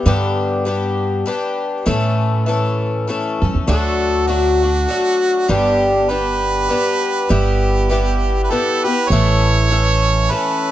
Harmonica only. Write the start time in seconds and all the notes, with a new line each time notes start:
3.68 A4
4.27 F#4
5.50 G4
6.10 B4
7.30 G4
8.43 B4
8.51 A4
8.84 B4
9.09 C#5
10.31 B4